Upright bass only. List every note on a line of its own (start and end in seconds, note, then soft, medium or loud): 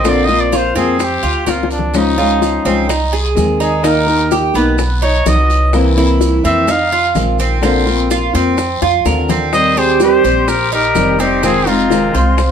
0.00 0.70 A#1 medium
0.76 1.20 F2 medium
1.23 1.46 D2 medium
1.47 2.59 C#2 medium
2.65 3.33 C2 medium
3.37 4.49 D#2 medium
4.55 5.22 B1 medium
5.26 6.38 C2 medium
6.44 7.12 F2 medium
7.15 8.28 A#1 loud
8.34 8.78 F2 medium
8.82 9.04 F2 medium
9.05 10.18 D#2 medium
10.24 10.91 A#1 medium
10.95 12.08 F1 loud
12.14 12.51 C2 medium